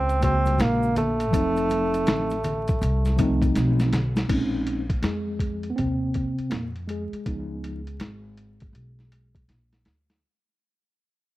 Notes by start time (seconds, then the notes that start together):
Already playing: C#2 C4
0.09 closed hi-hat, shaker
0.20 C#3 G#3 A#3 C4 F#4, kick, closed hi-hat, shaker
0.46 closed hi-hat, high conga, shaker
0.58 A#1 A#3, snare, closed hi-hat, shaker
0.83 shaker
0.96 A3, closed hi-hat, low conga, shaker
1.20 closed hi-hat, shaker
1.31 F1 F3 F#3 C4 D#4, kick, closed hi-hat, shaker
1.39 A3
1.56 closed hi-hat, shaker
1.70 closed hi-hat, high conga, shaker
1.94 closed hi-hat, shaker
2.06 A1, snare, closed hi-hat, low conga, shaker
2.30 closed hi-hat, shaker
2.44 closed hi-hat, low conga, shaker
2.68 kick, closed hi-hat, shaker
2.82 C2, closed hi-hat, shaker
3.05 snare, closed hi-hat, high conga, shaker
3.17 F3 A3 C4 D#4, kick, closed hi-hat, high conga, shaker
3.42 kick, closed hi-hat, high conga, shaker
3.55 B1, snare, closed hi-hat, shaker
3.79 snare, closed hi-hat, shaker
3.93 snare, closed hi-hat, low conga, shaker
4.16 snare, closed hi-hat, high conga, shaker
4.28 A#1 G#3 C4 C#4 D#4, kick, closed hi-hat, crash
4.67 closed hi-hat
4.90 kick, closed hi-hat
5.02 F2 G#3 G#4, snare, closed hi-hat
5.39 kick, closed hi-hat
5.63 closed hi-hat
5.70 B3
5.76 D#2 C3 C4, kick, closed hi-hat
6.14 kick, closed hi-hat
6.39 muted upright bass stroke, closed hi-hat
6.50 F2 A#2 A#3, snare, closed hi-hat
6.76 closed hi-hat
6.87 G#3 G#4, closed hi-hat
7.12 muted upright bass stroke, closed hi-hat
7.26 C#2 F3 B3 D#4, kick, closed hi-hat
7.64 closed hi-hat
7.87 closed hi-hat
8.00 G#1, snare, closed hi-hat
8.37 closed hi-hat
8.60 kick, closed hi-hat
8.73 B1, closed hi-hat
8.99 snare
9.12 closed hi-hat
9.35 kick, closed hi-hat
9.48 A#1, snare, closed hi-hat
9.73 snare, closed hi-hat
9.85 D2, snare, closed hi-hat
10.10 snare, closed hi-hat